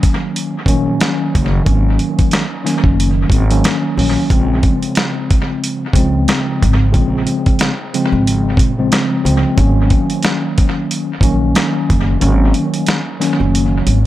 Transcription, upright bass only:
0.66 0.97 A#1 medium
1.35 1.64 F#1 medium
1.67 1.96 G#1 loud
2.84 3.27 F#1 medium
3.30 3.60 G#1 medium
3.97 4.15 A#1 medium
4.30 4.60 A#1 loud
5.94 6.24 C#2 medium
6.63 6.92 G#1 medium
6.94 7.24 A#1 loud
8.12 8.55 G#1 medium
8.57 8.88 A#1 medium
9.25 9.42 C#2 medium
9.58 9.88 G#1 loud
11.21 11.52 A#1 medium
11.90 12.19 F#1 medium
12.22 12.52 G#1 loud
13.40 13.82 F#1 medium
13.87 14.06 G#1 medium

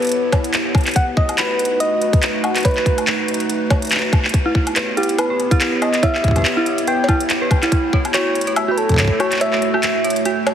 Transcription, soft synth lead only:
0.00 0.54 B4 medium
0.96 1.05 F#5 loud
1.17 1.40 D#5 loud
1.38 1.82 B4 loud
1.80 2.43 D#5 loud
2.44 2.66 F#4 medium
2.65 3.28 B4 medium
4.97 5.20 G4 medium
5.19 5.83 B4 loud
5.82 6.05 D#5 loud
6.03 6.87 E5 loud
6.88 7.47 G5 loud
8.14 8.53 C#5 loud
8.56 8.73 E5 loud
8.71 8.79 B4 medium
8.78 9.22 A4 loud
9.20 9.41 C#5 loud
9.41 10.54 E5 loud

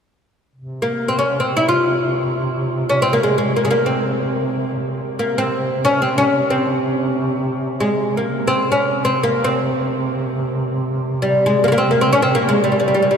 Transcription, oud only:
0.82 1.08 A#3 medium
1.08 1.18 C4 medium
1.19 1.40 C#4 medium
1.40 1.56 C4 medium
1.57 1.68 E4 medium
1.69 2.42 F4 medium
2.90 3.02 C#4 medium
3.02 3.13 C4 medium
3.13 3.23 A#3 medium
3.23 3.37 G#3 medium
3.38 3.56 G#3 medium
3.56 3.64 A#3 medium
3.65 3.70 G#3 medium
3.71 3.86 A#3 medium
3.86 4.71 C4 medium
5.19 5.38 A#3 medium
5.38 5.88 C4 medium
5.85 6.02 C#4 medium
6.02 6.17 C4 medium
6.18 6.52 C#4 medium
6.50 7.44 C4 medium
7.80 8.17 G#3 medium
8.17 8.49 A#3 medium
8.48 8.71 C4 medium
8.72 9.04 C#4 medium
9.05 9.24 C4 medium
9.23 9.43 A#3 medium
9.44 10.51 C4 medium
11.22 11.46 G3 medium
11.46 11.62 G#3 medium
11.64 11.66 A#3 medium
11.68 11.70 G#3 medium
11.72 11.78 A#3 medium
11.78 11.90 C4 medium
11.91 12.01 A#3 medium
12.01 12.12 C4 medium
12.13 12.22 C#4 medium
12.22 12.35 C4 medium
12.35 12.48 A#3 medium
12.49 12.63 G#3 medium
12.64 12.71 G3 medium
12.72 12.79 G3 soft
12.80 12.86 G3 medium
12.88 12.93 G3 soft
12.94 13.01 G3 medium
13.02 13.09 G3 soft
13.11 13.17 G3 medium

